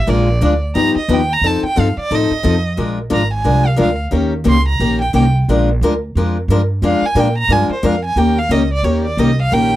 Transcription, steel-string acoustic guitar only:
0.07 0.28 F3 medium
0.07 0.28 G#3 medium
0.07 0.28 D4 medium
0.07 0.28 F4 medium
0.07 0.28 A#4 medium
0.41 0.53 F3 medium
0.41 0.52 G#3 medium
0.41 0.53 D4 loud
0.41 0.53 F4 medium
0.41 0.53 A#4 medium
0.75 0.96 F3 medium
0.75 0.96 B3 medium
0.75 0.96 D#4 medium
0.75 0.96 G4 medium
1.09 1.20 F3 medium
1.09 1.20 B3 medium
1.09 1.20 D#4 medium
1.09 1.20 G4 medium
1.44 1.64 F3 medium
1.44 1.64 C4 medium
1.44 1.64 D#4 medium
1.44 1.64 A4 medium
1.76 1.87 F3 medium
1.76 1.87 C4 medium
1.76 1.88 D#4 loud
1.76 1.88 A4 loud
2.11 2.31 F3 medium
2.11 2.31 C4 medium
2.11 2.31 D#4 medium
2.11 2.31 A4 medium
2.43 2.54 F3 medium
2.43 2.55 C4 medium
2.43 2.55 D#4 medium
2.43 2.55 A4 medium
2.77 2.98 F3 medium
2.77 2.98 G#3 medium
2.77 2.98 D4 medium
2.77 2.98 F4 medium
2.77 2.98 A#4 medium
3.10 3.21 F3 medium
3.10 3.22 G#3 medium
3.10 3.21 D4 medium
3.10 3.22 F4 medium
3.10 3.22 A#4 medium
3.44 3.65 F3 medium
3.44 3.65 G#3 medium
3.44 3.65 D4 medium
3.44 3.65 F4 medium
3.44 3.65 A#4 medium
3.76 3.88 F3 medium
3.76 3.89 G#3 medium
3.76 3.89 D4 medium
3.76 3.89 F4 medium
3.76 3.89 A#4 medium
4.11 4.32 D#3 medium
4.11 4.33 A#3 medium
4.11 4.32 C#4 medium
4.11 4.33 G4 medium
4.11 4.33 A#4 medium
4.44 4.56 D#3 medium
4.44 4.56 A#3 medium
4.44 4.56 C#4 medium
4.44 4.57 G4 medium
4.44 4.57 A#4 medium
4.80 5.00 D#3 medium
4.80 5.00 A#3 medium
4.80 5.00 C#4 medium
4.80 5.01 G4 medium
4.80 5.01 A#4 medium
5.13 5.24 D#3 medium
5.13 5.25 A#3 medium
5.13 5.25 C#4 medium
5.13 5.25 G4 medium
5.13 5.25 A#4 medium
5.49 5.69 F3 medium
5.49 5.69 G#3 medium
5.49 5.69 D4 medium
5.49 5.69 F4 medium
5.49 5.69 A#4 medium
5.83 5.93 F3 medium
5.83 5.93 G#3 medium
5.83 5.93 D4 medium
5.83 5.93 F4 medium
5.83 5.93 A#4 medium
6.17 6.36 F3 medium
6.17 6.36 G#3 medium
6.17 6.36 D4 medium
6.17 6.37 F4 medium
6.17 6.37 A#4 medium
6.50 6.60 F3 medium
6.50 6.60 G#3 medium
6.50 6.60 D4 medium
6.50 6.61 F4 medium
6.50 6.61 A#4 medium
6.82 7.03 F3 medium
6.82 7.03 G#3 medium
6.82 7.03 D4 medium
6.82 7.03 F4 medium
6.82 7.04 A#4 medium
7.15 7.27 F3 medium
7.15 7.27 G#3 medium
7.15 7.27 D4 medium
7.15 7.27 F4 medium
7.15 7.27 A#4 medium
7.50 7.70 F3 medium
7.50 7.71 G#3 medium
7.50 7.70 D4 medium
7.50 7.71 F4 medium
7.50 7.71 A#4 medium
7.83 7.94 F3 medium
7.83 7.94 G#3 medium
7.83 7.94 D4 medium
7.83 7.94 F4 medium
7.83 7.95 A#4 loud
8.17 8.37 D#3 medium
8.17 8.38 A#3 medium
8.17 8.38 C#4 medium
8.17 8.38 G4 medium
8.17 8.38 A#4 medium
8.51 8.62 D#3 medium
8.51 8.62 A#3 medium
8.51 8.62 C#4 medium
8.51 8.62 G4 medium
8.51 8.62 A#4 medium
8.84 9.05 D#3 medium
8.84 9.05 A#3 medium
8.84 9.05 C#4 medium
8.84 9.05 G4 medium
8.84 9.05 A#4 medium
9.18 9.29 D#3 medium
9.18 9.30 A#3 medium
9.18 9.30 C#4 medium
9.18 9.30 G4 medium
9.18 9.30 A#4 medium
9.51 9.72 D#3 medium
9.51 9.73 A#3 medium
9.51 9.73 C#4 medium
9.51 9.73 G4 medium
9.51 9.73 A#4 medium

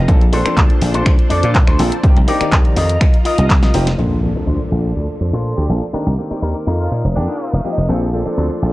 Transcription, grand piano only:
0.08 0.21 F3 medium
0.08 0.21 A#3 medium
0.08 0.21 C4 medium
0.08 0.21 D4 medium
0.08 0.21 A4 loud
0.33 0.42 F3 medium
0.33 0.43 A#3 medium
0.33 0.43 C4 medium
0.33 0.43 D4 medium
0.33 0.43 A4 medium
0.45 1.76 F3 medium
0.45 1.76 A#3 medium
0.45 1.77 C4 medium
0.45 1.77 D4 medium
0.45 1.77 A4 medium
1.79 1.92 F3 medium
1.79 1.92 A#3 medium
1.79 1.92 C4 medium
1.79 1.92 D4 medium
1.79 1.92 A4 loud
2.03 2.16 D#3 medium
2.03 2.16 A#3 medium
2.03 2.16 C4 medium
2.03 2.17 D4 medium
2.03 2.17 G4 loud
2.28 2.38 D#3 medium
2.28 2.38 A#3 medium
2.28 2.38 C4 medium
2.28 2.38 D4 medium
2.28 2.38 G4 medium
2.41 2.75 D#3 medium
2.41 2.75 A#3 medium
2.41 2.75 C4 medium
2.41 2.76 G4 loud
2.41 2.75 D5 medium
3.74 3.87 F3 medium
3.74 3.87 A#3 medium
3.74 3.87 C4 medium
3.74 3.87 D#4 medium
3.74 3.87 G4 loud
3.99 4.11 F3 medium
3.99 4.11 A#3 medium
3.99 4.11 C4 medium
3.99 4.12 D4 medium
3.99 4.12 A4 medium
4.23 4.33 F3 medium
4.23 4.33 A#3 medium
4.23 4.33 C4 medium
4.23 4.33 D4 medium
4.23 4.33 A4 medium
4.35 5.66 F3 medium
4.35 5.67 A#3 medium
4.35 5.67 C4 medium
4.35 5.67 D4 medium
4.35 5.67 A4 medium
5.69 5.82 F3 medium
5.69 5.82 A#3 medium
5.69 5.82 C4 medium
5.69 5.82 D4 medium
5.69 5.82 A4 medium
5.93 6.06 D#3 medium
5.93 6.06 A#3 medium
5.93 6.06 C4 medium
5.93 6.07 D4 medium
5.93 6.07 G4 medium
6.18 6.28 D#3 medium
6.18 6.28 A#3 medium
6.18 6.28 C4 medium
6.18 6.28 D4 medium
6.18 6.28 G4 medium
6.31 6.65 D#3 medium
6.31 6.66 A#3 medium
6.31 6.66 C4 medium
6.31 6.66 G4 medium
6.31 6.66 D5 medium
7.64 7.77 F3 medium
7.64 7.77 A#3 medium
7.64 7.77 C4 medium
7.64 7.77 D#4 medium
7.64 7.78 G4 loud
7.88 8.01 F3 medium
7.88 8.02 A#3 medium
7.88 8.02 C4 medium
7.88 8.02 D4 medium
7.88 8.02 A4 loud
8.13 8.23 F3 medium
8.13 8.23 A#3 medium
8.13 8.23 C4 medium
8.13 8.23 D4 medium
8.13 8.23 A4 medium
8.25 8.73 F3 medium
8.25 8.73 A#3 medium
8.25 8.73 C4 medium
8.25 8.73 D4 medium
8.25 8.73 A4 medium

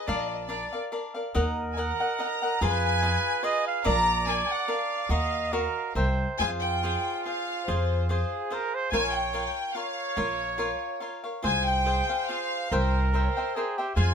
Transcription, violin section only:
0.08 0.17 D5 medium
0.18 0.26 D#5 medium
0.27 0.34 D5 medium
0.33 0.40 D#5 medium
0.44 0.75 D5 medium
1.72 1.78 G#5 medium
1.82 2.22 F#5 medium
2.23 2.63 A#5 medium
2.62 2.82 G#5 medium
2.84 3.63 G#5 loud
3.85 4.24 A#5 loud
4.27 4.49 G#5 medium
4.49 4.68 F#5 medium
4.69 5.96 F5 medium
6.39 6.49 G#5 loud
6.62 7.20 G5 medium
7.25 7.67 F5 medium
7.69 8.10 C5 medium
8.13 8.49 C5 medium
8.91 9.12 G#5 loud
9.13 9.75 G5 medium
9.71 10.15 F5 medium
10.14 10.54 C#5 medium
10.56 10.96 C#5 medium
11.44 11.66 G#5 medium
11.66 12.29 G5 medium
12.26 12.70 F5 medium
12.70 13.11 C5 medium
13.12 13.20 C5 medium
13.21 13.29 C#5 medium
13.27 13.55 C5 medium
13.96 14.14 G#5 medium

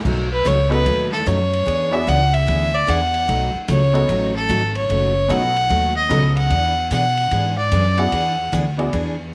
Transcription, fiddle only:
0.32 0.48 B4 medium
0.47 0.71 C#5 medium
0.71 1.09 B4 medium
1.12 1.29 A4 medium
1.27 1.94 C#5 medium
1.93 2.09 E5 medium
2.08 2.35 F#5 medium
2.33 2.75 E5 medium
2.74 2.91 D5 medium
2.90 3.55 F#5 medium
3.70 4.32 C#5 medium
4.36 4.73 A4 medium
4.76 5.32 C#5 medium
5.31 5.96 F#5 loud
5.96 6.34 D#5 medium
6.37 6.88 F#5 medium
6.93 7.54 F#5 medium
7.58 8.00 D5 medium
7.98 8.53 F#5 medium

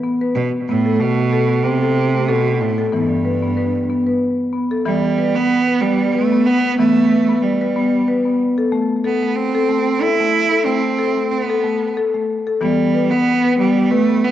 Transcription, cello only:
0.35 0.50 B2 medium
0.69 1.02 A2 medium
1.00 1.65 B2 medium
1.63 2.30 C3 medium
2.29 2.62 B2 loud
2.61 2.93 A2 medium
2.93 4.18 G2 medium
4.86 5.37 G3 medium
5.35 5.83 B3 loud
5.81 6.14 G3 medium
6.12 6.48 A3 medium
6.46 6.77 B3 loud
6.78 7.44 A3 loud
7.43 8.40 G3 medium
9.06 9.37 B3 medium
9.36 10.03 C4 medium
10.01 10.66 E4 loud
10.65 11.31 C4 medium
11.31 11.42 C4 medium
11.42 11.96 B3 medium
12.61 13.12 G3 loud
13.11 13.58 B3 loud
13.58 13.92 G3 medium
13.91 14.26 A3 loud
14.24 14.31 B3 medium

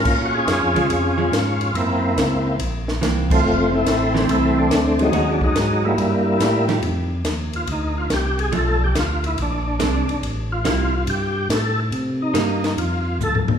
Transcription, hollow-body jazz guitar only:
0.76 0.88 F3 medium
0.76 0.89 G#3 medium
0.76 0.89 C#4 medium
1.18 1.30 F3 medium
1.18 1.31 G#3 medium
1.18 1.31 C#4 medium
3.01 3.44 E3 soft
3.01 3.44 A#3 soft
3.01 3.45 C4 medium
4.14 4.68 E3 medium
4.14 4.68 A3 medium
4.14 4.68 C4 medium
5.13 5.38 D#3 medium
5.13 5.39 G#3 medium
5.13 5.39 C#4 medium
5.13 5.39 F#4 medium
6.68 6.81 F3 medium
6.68 6.82 A3 medium
6.68 6.82 D#4 medium
6.68 6.82 G4 medium
8.52 8.78 F3 medium
8.52 8.78 A3 medium
8.52 8.79 D4 medium
9.79 10.06 G#3 medium
9.79 10.06 C4 medium
9.79 10.06 D4 medium
10.65 10.91 G3 medium
10.65 10.91 C4 medium
10.65 10.91 E4 medium
12.34 12.60 G3 medium
12.34 12.60 A#3 medium
12.34 12.61 D#4 medium

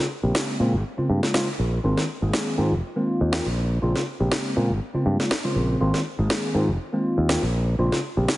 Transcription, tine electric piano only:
0.23 0.57 C#3 medium
0.23 0.57 G#3 medium
0.23 0.57 A#3 medium
0.23 0.57 C4 medium
0.23 0.57 G4 medium
0.59 0.72 C#3 medium
0.59 0.72 G#3 medium
0.59 0.72 A#3 medium
0.59 0.73 C4 medium
0.59 0.73 F4 medium
0.97 1.31 C#3 medium
0.97 1.31 G#3 medium
0.97 1.31 A#3 medium
0.97 1.31 C4 medium
0.97 1.32 F4 medium
1.34 1.47 C#3 medium
1.34 1.47 G#3 medium
1.34 1.47 A#3 medium
1.34 1.47 C4 medium
1.34 1.47 F4 medium
1.84 2.03 D#3 medium
1.84 2.03 G#3 medium
1.84 2.03 A#3 medium
1.84 2.03 C4 medium
1.84 2.03 F4 loud
2.22 2.55 D#3 medium
2.22 2.56 G#3 medium
2.22 2.56 A#3 medium
2.22 2.56 C4 medium
2.22 2.56 G#4 medium
2.58 2.71 D#3 medium
2.58 2.71 G#3 medium
2.58 2.71 A#3 medium
2.58 2.71 C4 medium
2.58 2.71 F4 medium
2.96 3.30 D#3 medium
2.96 3.30 G#3 medium
2.96 3.30 A#3 medium
2.96 3.30 C4 medium
2.96 3.30 F4 medium
3.32 3.45 D#3 medium
3.32 3.45 G#3 medium
3.32 3.45 A#3 medium
3.32 3.45 C4 medium
3.32 3.45 F4 medium
3.82 4.01 C#3 medium
3.82 4.01 G#3 medium
3.82 4.01 A#3 medium
3.82 4.02 C4 medium
3.82 4.02 F4 loud
4.20 4.53 C#3 medium
4.20 4.53 G#3 medium
4.20 4.53 A#3 medium
4.20 4.54 C4 medium
4.20 4.54 G4 medium
4.56 4.69 C#3 medium
4.56 4.69 G#3 medium
4.56 4.69 A#3 medium
4.56 4.69 C4 medium
4.56 4.69 F4 medium
4.94 5.28 C#3 medium
4.94 5.28 G#3 medium
4.94 5.28 A#3 medium
4.94 5.28 C4 medium
4.94 5.28 F4 medium
5.44 5.77 C#3 medium
5.44 5.78 G#3 medium
5.44 5.78 A#3 medium
5.44 5.78 C4 medium
5.44 5.78 F4 medium
5.80 6.00 D#3 medium
5.80 6.00 G#3 medium
5.80 6.00 A#3 medium
5.80 6.00 C4 medium
5.80 6.00 F4 loud
6.19 6.52 D#3 medium
6.19 6.52 G#3 medium
6.19 6.52 A#3 medium
6.19 6.52 C4 medium
6.19 6.52 G#4 medium
6.55 6.67 D#3 medium
6.55 6.67 G#3 medium
6.55 6.67 A#3 medium
6.55 6.68 C4 medium
6.55 6.68 F4 medium
6.93 7.26 D#3 medium
6.93 7.26 G#3 medium
6.93 7.26 A#3 medium
6.93 7.27 C4 medium
6.93 7.27 F4 medium
7.29 7.42 D#3 medium
7.29 7.42 G#3 medium
7.29 7.42 A#3 medium
7.29 7.42 C4 medium
7.29 7.42 F4 medium
7.79 7.98 C#3 medium
7.79 7.98 G#3 medium
7.79 7.98 A#3 medium
7.79 7.98 C4 medium
7.79 7.98 F4 loud
8.17 8.37 C#3 medium
8.17 8.37 G#3 medium
8.17 8.37 A#3 medium
8.17 8.37 C4 medium
8.17 8.37 G4 medium

